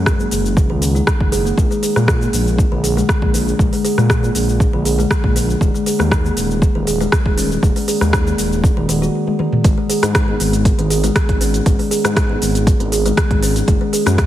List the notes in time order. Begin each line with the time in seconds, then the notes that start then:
Already playing: F#2
0.06 kick, cross-stick, cabasa
0.19 A#3, cabasa
0.31 F#1, open hi-hat, cabasa
0.46 cabasa
0.57 kick, cabasa
0.70 C#2 D#3
0.82 D#3, open hi-hat, cabasa
0.95 D#4, cabasa
1.07 kick, cross-stick, cabasa
1.21 F#1, kick
1.32 G#4, open hi-hat, cabasa
1.46 A#3, cabasa
1.58 A#1 G#3, kick, cabasa
1.71 G#3, cabasa
1.83 G#4, open hi-hat, cabasa
1.96 A#2 G#3, cross-stick, cabasa
2.08 kick, cross-stick, cabasa
2.21 A#3, cabasa
2.33 A#1, open hi-hat, cabasa
2.47 cabasa
2.58 kick, cabasa
2.72 A#1 D3
2.84 G#4, open hi-hat, cabasa
2.97 G#3, cabasa
3.09 kick, cross-stick, cabasa
3.22 A#1, kick
3.34 D4, open hi-hat, cabasa
3.48 cabasa
3.59 A#1 G#3, kick, cabasa
3.73 G#3, open hi-hat, cabasa
3.85 G#4, open hi-hat, cabasa
3.98 A#2 G#3, cross-stick, cabasa
4.10 kick, cross-stick, cabasa
4.23 A#3, cabasa
4.35 A#1, open hi-hat, cabasa
4.49 cabasa
4.60 kick, cabasa
4.73 A#1 D3
4.85 G#4, open hi-hat, cabasa
4.99 G#3, cabasa
5.11 kick, cross-stick, cabasa
5.24 A#1, kick
5.36 D4, open hi-hat, cabasa
5.50 cabasa
5.61 D#1 G#3, kick, cabasa
5.74 G#3, cabasa
5.86 G#4, open hi-hat, cabasa
5.99 D#2 G#3, cross-stick, cabasa
6.11 kick, cross-stick, cabasa
6.25 A#3, cabasa
6.37 D#1, open hi-hat, cabasa
6.51 cabasa
6.62 kick, cabasa
6.75 D#1 D#3
6.87 G#4, open hi-hat, cabasa
7.01 G#3, cabasa
7.12 kick, cross-stick, cabasa
7.26 D#1, kick
7.37 C#4, open hi-hat, cabasa
7.52 cabasa
7.63 D#1 G#3, kick, cabasa
7.76 G#3, open hi-hat, cabasa
7.88 G#4, open hi-hat, cabasa
8.01 D#2 G#3, cross-stick, cabasa
8.13 kick, cross-stick, cabasa
8.27 A#3, cabasa
8.38 D#1, open hi-hat, cabasa
8.52 cabasa
8.64 kick, cabasa
8.77 D#1 D#3
8.89 D#3, open hi-hat, cabasa
9.02 F#4, cabasa
9.28 high tom
9.39 D#3, mid tom
9.53 mid tom
9.64 G#1 G#3, kick, closed hi-hat, cabasa
9.78 G#3
9.90 G#4, open hi-hat, cabasa
10.03 G#2 G#3, cross-stick, closed hi-hat, cabasa
10.15 kick, cross-stick, closed hi-hat, cabasa
10.28 B3
10.40 G#1, open hi-hat, cabasa
10.53 closed hi-hat, cabasa
10.65 kick, closed hi-hat, cabasa
10.79 G#1 D#3, closed hi-hat
10.90 G#4, open hi-hat, cabasa
11.04 G#3, closed hi-hat, cabasa
11.16 kick, cross-stick, closed hi-hat, cabasa
11.29 G#1, kick, closed hi-hat
11.41 C#4, open hi-hat, cabasa
11.54 closed hi-hat, cabasa
11.66 G#1 G#3, kick, closed hi-hat, cabasa
11.79 G#3, open hi-hat
11.91 G#4, open hi-hat, cabasa
12.04 G#2 G#3, cross-stick, closed hi-hat, cabasa
12.17 kick, cross-stick, closed hi-hat, cabasa
12.30 B3
12.42 G#1, open hi-hat, cabasa
12.55 closed hi-hat, cabasa
12.67 kick, closed hi-hat, cabasa
12.80 G#1 D#3, closed hi-hat
12.92 G#4, open hi-hat, cabasa
13.06 G#3, closed hi-hat, cabasa
13.17 kick, cross-stick, closed hi-hat, cabasa
13.31 G#1, kick, closed hi-hat
13.43 C#4, open hi-hat, cabasa
13.56 closed hi-hat, cabasa
13.68 F#1 G#3, kick, closed hi-hat, cabasa
13.81 G#3
13.93 G#4, open hi-hat, cabasa
14.06 F#2 G#3, cross-stick, closed hi-hat, cabasa
14.18 kick, cross-stick, closed hi-hat, cabasa